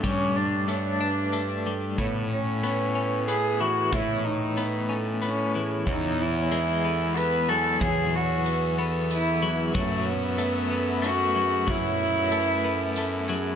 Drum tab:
HH |x-x-x-|x-x-x-|x-x-x-|x-x-x-|
BD |o-----|o-----|o-----|o-----|

HH |x-x-x-|x-x-x-|x-x-x-|
BD |o-----|o-----|o-----|